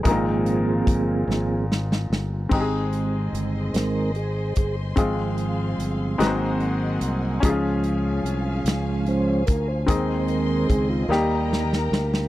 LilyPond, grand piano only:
<<
  \new Staff \with { instrumentName = "Grand piano" } { \time 6/8 \key aes \major \tempo 4. = 49 <aes bes c' ees' f' bes'>2. | <c' ees' g' aes'>2. | <c' f' aes'>4. <aes c' ees' ges' ces'' c''>4. | <des' ees' f' aes'>2. |
<c' ees' aes'>4. <bes ees' g'>4. | }
  \new Staff \with { instrumentName = "Grand piano" } { \clef bass \time 6/8 \key aes \major bes,4. r4. | aes4. r4. | aes4. aes,4. | f4. r4. |
ees4. g4. | }
>>